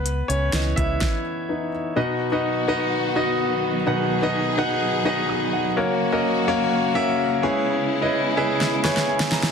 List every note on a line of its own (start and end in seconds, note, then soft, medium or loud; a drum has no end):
0.00 0.21 C#2 medium
0.00 0.26 B3 medium
0.00 0.30 B4 medium
0.06 closed hi-hat medium
0.28 0.49 C#2 medium
0.28 0.74 C#4 medium
0.28 0.73 C#5 loud
0.28 closed hi-hat medium
0.53 0.73 C#2 medium
0.53 1.21 E3 soft
0.53 1.21 B3 soft
0.53 snare loud
0.53 closed hi-hat medium
0.76 0.97 C#2 medium
0.76 1.69 E4 medium
0.76 1.68 E5 medium
0.76 kick medium
0.76 closed hi-hat medium
1.01 kick loud
1.01 snare medium
1.49 1.70 E3 soft
1.49 1.70 B3 soft
1.49 1.71 D#4 soft
1.96 2.64 B2 medium
1.96 5.73 D#3 medium
1.96 7.39 F#3 medium
1.96 2.27 B3 medium
1.96 5.73 B3 medium
1.96 2.27 D#4 medium
1.96 2.27 F#4 medium
1.96 3.85 F#4 medium
1.96 2.27 B4 medium
1.96 2.27 D#5 medium
2.32 2.62 B3 medium
2.32 2.62 D#4 medium
2.32 2.62 F#4 medium
2.32 2.63 B4 medium
2.32 2.63 D#5 medium
2.68 3.08 B3 loud
2.68 3.08 D#4 medium
2.68 3.08 F#4 medium
2.68 3.08 B4 medium
2.68 3.09 D#5 loud
3.16 3.76 B3 medium
3.16 3.76 D#4 medium
3.16 3.76 F#4 medium
3.16 3.76 B4 medium
3.16 3.76 D#5 loud
3.87 4.54 B2 medium
3.87 4.17 B3 medium
3.87 4.17 D#4 medium
3.87 4.17 F#4 medium
3.87 5.75 G#4 medium
3.87 4.17 B4 medium
3.87 4.17 F#5 medium
4.22 4.53 B3 medium
4.22 4.53 D#4 medium
4.22 4.53 F#4 medium
4.22 4.53 B4 medium
4.22 4.53 D#5 loud
4.58 4.98 B3 loud
4.58 4.98 D#4 medium
4.58 4.98 F#4 medium
4.58 4.99 B4 medium
4.58 4.99 F#5 loud
5.05 5.66 B3 medium
5.05 5.66 D#4 medium
5.05 5.66 F#4 medium
5.05 5.66 B4 medium
5.05 5.66 D#5 loud
5.29 5.52 D#6 medium
5.53 5.98 F#5 medium
5.76 9.52 C#3 medium
5.76 7.41 A#3 medium
5.76 6.07 A#3 medium
5.76 6.07 C#4 medium
5.76 7.41 F#4 loud
5.76 6.07 F#4 medium
5.76 6.07 A#4 medium
5.76 6.07 C#5 medium
6.12 6.42 A#3 medium
6.12 6.43 C#4 medium
6.12 6.43 F#4 medium
6.12 6.43 A#4 medium
6.12 6.43 D#5 medium
6.48 6.88 A#3 loud
6.48 6.88 C#4 medium
6.48 6.88 F#4 medium
6.48 6.88 A#4 medium
6.48 6.88 C#5 loud
6.95 7.42 A#3 medium
6.95 7.41 C#4 medium
6.95 7.43 F#4 medium
6.95 7.43 A#4 medium
6.95 7.43 E5 loud
7.42 8.10 C#3 medium
7.42 9.52 G#3 medium
7.42 9.52 B3 medium
7.42 7.93 C#4 medium
7.42 7.93 E4 medium
7.42 9.52 E4 loud
7.42 7.93 G#4 medium
7.42 7.93 B4 medium
7.42 7.93 C#5 loud
8.01 8.32 C#4 medium
8.01 8.32 E4 medium
8.01 8.32 G#4 medium
8.01 8.32 B4 medium
8.01 8.32 D#5 medium
8.37 8.78 C#4 loud
8.37 8.78 E4 medium
8.37 8.78 G#4 medium
8.37 8.78 B4 medium
8.37 8.59 D#5 medium
8.37 8.59 E5 loud
8.60 9.05 E5 medium
8.60 snare medium
8.84 9.45 C#4 medium
8.84 9.45 E4 medium
8.84 9.45 G#4 medium
8.84 9.45 B4 medium
8.84 9.45 C#5 loud
8.84 snare medium
8.97 snare medium
9.08 9.30 G#5 medium
9.20 snare medium
9.32 9.52 A#5 medium
9.32 snare loud
9.43 snare medium